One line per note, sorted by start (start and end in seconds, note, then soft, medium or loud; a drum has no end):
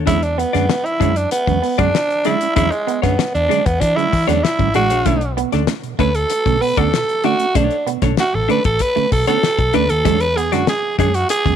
0.06 0.44 E2 medium
0.06 0.18 D3 medium
0.06 0.18 F#3 medium
0.06 0.19 G#3 medium
0.06 0.18 G#3 medium
0.06 0.18 C#4 medium
0.06 0.22 D4 medium
0.06 0.24 E4 loud
0.06 0.23 G#4 medium
0.06 0.23 C#5 medium
0.06 kick loud
0.06 closed hi-hat medium
0.23 0.40 D4 medium
0.23 closed hi-hat soft
0.38 0.87 B3 medium
0.38 0.51 B3 medium
0.38 muted clean electric guitar stroke soft
0.38 closed hi-hat medium
0.53 0.67 F#2 loud
0.53 0.65 D3 medium
0.53 0.65 F#3 medium
0.53 0.65 G#3 medium
0.53 0.66 C#4 medium
0.53 0.67 D4 soft
0.53 0.66 G#4 medium
0.53 0.66 D5 medium
0.53 muted clean electric guitar stroke soft
0.53 snare soft
0.53 closed hi-hat soft
0.70 0.76 G#3 soft
0.70 0.76 C#4 medium
0.70 snare loud
0.85 1.18 E4 medium
0.85 closed hi-hat soft
1.00 1.25 F#2 loud
1.00 1.12 D3 medium
1.00 1.12 F#3 medium
1.00 1.13 G#3 medium
1.00 1.12 G#3 medium
1.00 1.12 C#4 medium
1.00 1.12 D4 medium
1.00 1.13 G#4 medium
1.00 1.13 C#5 medium
1.00 kick medium
1.00 closed hi-hat medium
1.16 1.31 D4 medium
1.16 muted clean electric guitar stroke soft
1.16 closed hi-hat medium
1.31 1.80 B3 medium
1.31 muted clean electric guitar stroke soft
1.31 closed hi-hat medium
1.47 1.60 E2 medium
1.47 1.59 D3 medium
1.47 1.59 F#3 medium
1.47 1.59 G#3 medium
1.47 1.59 C#4 medium
1.47 muted clean electric guitar stroke soft
1.47 kick medium
1.47 closed hi-hat soft
1.63 1.75 B3 medium
1.63 open hi-hat medium
1.78 1.91 F#2 medium
1.78 1.90 D3 medium
1.78 1.90 F#3 medium
1.78 1.90 G#3 medium
1.78 1.91 B3 medium
1.78 1.90 C#4 medium
1.78 2.27 D4 medium
1.78 1.93 D4 medium
1.78 1.93 G#4 medium
1.78 1.94 D5 medium
1.78 kick medium
1.78 closed hi-hat medium
1.95 snare loud
2.10 closed hi-hat soft
2.25 2.37 D3 medium
2.25 2.37 F#3 medium
2.25 2.38 G#3 medium
2.25 2.37 G#3 medium
2.25 2.37 C#4 medium
2.25 2.37 D4 medium
2.25 2.55 E4 medium
2.25 2.38 G#4 medium
2.25 2.38 D5 medium
2.25 closed hi-hat medium
2.41 2.48 G#3 soft
2.41 2.48 C#4 soft
2.41 muted clean electric guitar stroke medium
2.41 closed hi-hat medium
2.56 2.69 E2 loud
2.56 2.68 D3 medium
2.56 2.68 F#3 medium
2.56 2.68 G#3 medium
2.56 2.68 C#4 medium
2.56 2.72 D4 medium
2.56 2.73 E4 loud
2.56 2.72 G#4 medium
2.56 2.73 C#5 medium
2.56 kick loud
2.56 closed hi-hat medium
2.71 3.02 G#3 medium
2.71 closed hi-hat soft
2.87 3.00 B3 medium
2.87 muted clean electric guitar stroke medium
2.87 closed hi-hat medium
3.02 3.16 F#2 medium
3.02 3.14 D3 medium
3.02 3.15 F#3 medium
3.02 3.14 G#3 medium
3.02 3.32 B3 medium
3.02 3.15 C#4 medium
3.02 3.16 D4 soft
3.02 3.16 G#4 soft
3.02 3.15 C#5 medium
3.02 muted clean electric guitar stroke soft
3.02 kick medium
3.02 snare soft
3.02 closed hi-hat soft
3.18 3.25 G#3 soft
3.18 3.25 C#4 soft
3.18 muted clean electric guitar stroke soft
3.18 snare loud
3.34 3.47 E2 medium
3.34 3.67 D4 loud
3.34 closed hi-hat soft
3.49 3.61 D3 medium
3.49 3.61 F#3 medium
3.49 3.62 G#3 medium
3.49 3.61 G#3 medium
3.49 3.61 C#4 medium
3.49 3.62 D4 medium
3.49 3.62 G#4 medium
3.49 3.63 D5 medium
3.49 closed hi-hat medium
3.66 3.78 E2 loud
3.66 3.82 B3 medium
3.66 kick loud
3.66 closed hi-hat medium
3.80 3.94 E3 loud
3.80 3.97 D4 loud
3.80 muted clean electric guitar stroke soft
3.80 kick medium
3.80 closed hi-hat medium
3.96 4.08 D3 medium
3.96 4.08 F#3 medium
3.96 4.08 G#3 medium
3.96 4.09 G#3 medium
3.96 4.08 C#4 medium
3.96 4.29 E4 medium
3.96 muted clean electric guitar stroke soft
3.96 closed hi-hat soft
4.13 4.25 E3 loud
4.13 muted clean electric guitar stroke soft
4.13 kick medium
4.13 open hi-hat medium
4.27 4.40 E2 medium
4.27 4.39 D3 medium
4.27 4.39 F#3 medium
4.27 4.39 G#3 medium
4.27 4.41 B3 medium
4.27 4.39 C#4 medium
4.27 4.44 D4 medium
4.27 4.42 D4 medium
4.27 4.42 G#4 medium
4.27 4.43 C#5 loud
4.27 snare soft
4.27 closed hi-hat medium
4.43 4.74 E4 loud
4.43 muted clean electric guitar stroke soft
4.43 snare loud
4.58 4.72 G#1 medium
4.58 4.70 D3 medium
4.58 4.70 F#3 medium
4.58 4.70 G#3 medium
4.58 4.70 C#4 medium
4.58 muted clean electric guitar stroke medium
4.58 kick medium
4.58 closed hi-hat soft
4.74 4.91 A1 medium
4.74 4.87 G#3 medium
4.74 4.87 D4 medium
4.74 5.33 F#4 loud
4.74 4.87 G#4 medium
4.74 4.87 D5 medium
4.74 closed hi-hat medium
4.90 5.03 A#1 medium
4.90 5.03 D4 medium
4.90 5.03 G#4 medium
4.90 5.02 C#5 medium
4.90 closed hi-hat medium
5.05 5.42 B1 loud
5.05 5.17 D3 medium
5.05 5.17 A3 medium
5.05 5.18 A3 medium
5.05 5.17 C#4 medium
5.05 5.21 D4 medium
5.05 5.21 A4 medium
5.05 5.22 C#5 medium
5.05 kick loud
5.05 closed hi-hat medium
5.21 closed hi-hat soft
5.37 5.48 B2 soft
5.37 5.49 B3 medium
5.37 muted clean electric guitar stroke medium
5.37 closed hi-hat medium
5.52 5.65 D2 medium
5.52 5.63 D3 medium
5.52 5.64 A3 medium
5.52 5.64 C#4 medium
5.52 5.66 D4 soft
5.52 5.65 A4 medium
5.52 5.65 D5 medium
5.52 muted clean electric guitar stroke soft
5.52 snare soft
5.52 closed hi-hat soft
5.67 5.74 A3 soft
5.67 5.74 C#4 soft
5.67 muted clean electric guitar stroke soft
5.67 snare loud
5.83 5.95 B2 medium
5.83 closed hi-hat soft
5.99 6.24 D2 loud
5.99 6.10 D3 medium
5.99 6.11 A3 medium
5.99 6.10 A3 medium
5.99 6.11 C#4 medium
5.99 6.11 D4 medium
5.99 6.12 A4 medium
5.99 6.17 B4 medium
5.99 6.12 C#5 medium
5.99 kick medium
5.99 closed hi-hat medium
6.15 6.63 A4 loud
6.15 closed hi-hat medium
6.30 muted clean electric guitar stroke soft
6.30 closed hi-hat medium
6.46 6.58 B1 medium
6.46 6.57 D3 medium
6.46 6.57 A3 medium
6.46 6.57 C#4 medium
6.46 muted clean electric guitar stroke soft
6.46 kick medium
6.46 closed hi-hat soft
6.61 6.73 B2 medium
6.61 6.74 B3 medium
6.61 6.79 B4 loud
6.61 open hi-hat medium
6.77 6.90 D2 medium
6.77 6.88 D3 medium
6.77 6.88 A3 medium
6.77 6.90 B3 medium
6.77 6.89 C#4 medium
6.77 6.92 D4 medium
6.77 7.26 A4 loud
6.77 6.93 A4 medium
6.77 6.93 D5 loud
6.77 kick medium
6.77 closed hi-hat medium
6.93 7.04 B2 medium
6.93 snare loud
7.09 closed hi-hat soft
7.24 7.35 D3 medium
7.24 7.37 A3 medium
7.24 7.35 A3 medium
7.24 7.35 C#4 medium
7.24 7.36 D4 medium
7.24 7.57 F#4 medium
7.24 7.37 A4 medium
7.24 7.37 D5 medium
7.24 closed hi-hat medium
7.40 7.46 A3 soft
7.40 7.46 C#4 soft
7.40 muted clean electric guitar stroke medium
7.40 closed hi-hat medium
7.55 7.68 B1 loud
7.55 7.66 D3 medium
7.55 7.66 A3 medium
7.55 7.68 A3 medium
7.55 7.66 C#4 medium
7.55 7.75 D4 medium
7.55 7.87 D4 medium
7.55 7.76 A4 medium
7.55 7.76 C#5 medium
7.55 kick loud
7.55 closed hi-hat medium
7.71 closed hi-hat soft
7.86 7.97 B2 medium
7.86 7.99 B3 loud
7.86 muted clean electric guitar stroke soft
7.86 closed hi-hat medium
8.01 8.15 B1 medium
8.01 8.13 D3 medium
8.01 8.13 A3 medium
8.01 8.13 C#4 medium
8.01 8.15 D4 soft
8.01 8.15 A4 medium
8.01 8.14 C#5 medium
8.01 muted clean electric guitar stroke medium
8.01 kick medium
8.01 snare soft
8.01 closed hi-hat soft
8.17 8.24 A3 soft
8.17 8.24 C#4 soft
8.17 8.36 F#4 loud
8.17 snare loud
8.34 8.46 A1 loud
8.34 8.45 B2 medium
8.34 8.50 A4 medium
8.49 8.60 D3 medium
8.49 8.61 A3 medium
8.49 8.60 A3 medium
8.49 8.60 C#4 medium
8.49 8.61 D4 medium
8.49 8.61 A4 medium
8.49 8.64 B4 loud
8.49 8.61 D5 medium
8.49 closed hi-hat soft
8.64 8.77 A1 medium
8.64 8.83 A4 loud
8.64 muted clean electric guitar stroke soft
8.64 kick loud
8.64 closed hi-hat medium
8.79 9.12 B4 loud
8.79 muted clean electric guitar stroke soft
8.79 kick medium
8.79 closed hi-hat medium
8.96 9.07 D3 medium
8.96 9.07 A3 medium
8.96 9.08 A3 medium
8.96 9.07 C#4 medium
8.96 muted clean electric guitar stroke medium
8.96 muted picked electric bass stroke soft
8.96 closed hi-hat soft
9.12 9.24 B1 medium
9.12 9.23 B2 medium
9.12 9.26 A4 loud
9.12 muted clean electric guitar stroke soft
9.12 kick medium
9.12 open hi-hat medium
9.27 9.38 D3 medium
9.27 9.38 A3 medium
9.27 9.40 B3 medium
9.27 9.38 C#4 medium
9.27 9.43 D4 medium
9.27 9.76 A4 loud
9.27 9.43 A4 medium
9.27 9.43 C#5 medium
9.27 snare soft
9.27 closed hi-hat medium
9.43 snare loud
9.59 9.71 B1 medium
9.59 muted clean electric guitar stroke medium
9.59 kick medium
9.59 closed hi-hat soft
9.73 9.87 D2 medium
9.73 9.85 D3 medium
9.73 9.86 A3 medium
9.73 9.85 A3 medium
9.73 9.85 C#4 loud
9.73 9.89 D4 loud
9.73 9.89 A4 loud
9.73 9.91 B4 loud
9.73 9.89 D5 loud
9.73 closed hi-hat medium
9.89 10.02 D#2 medium
9.89 10.22 A4 loud
9.89 muted clean electric guitar stroke medium
9.89 closed hi-hat medium
10.05 10.53 E2 medium
10.05 10.16 D3 medium
10.05 10.16 F#3 medium
10.05 10.18 G#3 medium
10.05 10.17 G#3 medium
10.05 10.17 C#4 medium
10.05 10.25 D4 medium
10.05 10.25 G#4 medium
10.05 10.25 C#5 medium
10.05 kick loud
10.05 closed hi-hat medium
10.20 10.38 B4 loud
10.20 closed hi-hat soft
10.36 10.49 B3 medium
10.36 10.54 G#4 medium
10.36 muted clean electric guitar stroke soft
10.36 closed hi-hat medium
10.52 10.65 F#2 medium
10.52 10.63 D3 medium
10.52 10.63 F#3 medium
10.52 10.63 G#3 medium
10.52 10.64 C#4 medium
10.52 10.65 D4 soft
10.52 10.68 F#4 medium
10.52 10.64 G#4 medium
10.52 10.64 D5 medium
10.52 muted clean electric guitar stroke soft
10.52 snare soft
10.52 closed hi-hat soft
10.67 10.74 G#3 soft
10.67 10.74 C#4 soft
10.67 10.97 G#4 medium
10.67 muted clean electric guitar stroke medium
10.67 snare loud
10.98 11.23 F#2 medium
10.98 11.10 D3 medium
10.98 11.10 F#3 medium
10.98 11.10 G#3 medium
10.98 11.11 G#3 medium
10.98 11.10 C#4 medium
10.98 11.11 D4 medium
10.98 11.16 G#4 medium
10.98 11.11 G#4 medium
10.98 11.12 C#5 medium
10.98 kick medium
10.98 closed hi-hat soft
11.14 11.29 F#4 medium
11.14 muted clean electric guitar stroke soft
11.14 closed hi-hat medium
11.29 11.56 G#4 loud
11.29 muted clean electric guitar stroke soft
11.29 closed hi-hat loud
11.45 11.56 E2 medium
11.45 11.56 D3 medium
11.45 11.56 F#3 medium
11.45 11.56 G#3 medium
11.45 11.56 C#4 medium
11.45 muted clean electric guitar stroke soft
11.45 kick medium
11.45 closed hi-hat soft